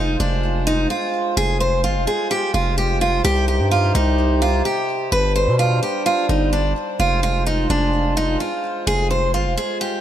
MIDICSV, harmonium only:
0, 0, Header, 1, 2, 480
1, 0, Start_track
1, 0, Tempo, 468750
1, 1403, Time_signature, 4, 2, 24, 8
1, 10248, End_track
2, 0, Start_track
2, 0, Title_t, "Harmonium"
2, 0, Program_c, 0, 20
2, 0, Note_on_c, 0, 56, 81
2, 0, Note_on_c, 0, 65, 92
2, 0, Note_on_c, 0, 72, 74
2, 3285, Note_off_c, 0, 56, 0
2, 3285, Note_off_c, 0, 65, 0
2, 3322, Note_on_c, 0, 63, 72
2, 3323, Note_on_c, 0, 48, 83
2, 3323, Note_on_c, 0, 67, 91
2, 5224, Note_off_c, 0, 48, 0
2, 5224, Note_off_c, 0, 63, 0
2, 5224, Note_off_c, 0, 67, 0
2, 5245, Note_on_c, 0, 55, 81
2, 5245, Note_on_c, 0, 62, 91
2, 7145, Note_off_c, 0, 55, 0
2, 7145, Note_off_c, 0, 62, 0
2, 7164, Note_on_c, 0, 56, 81
2, 7165, Note_on_c, 0, 65, 90
2, 10248, Note_off_c, 0, 56, 0
2, 10248, Note_off_c, 0, 65, 0
2, 10248, Note_off_c, 0, 72, 0
2, 10248, End_track
0, 0, End_of_file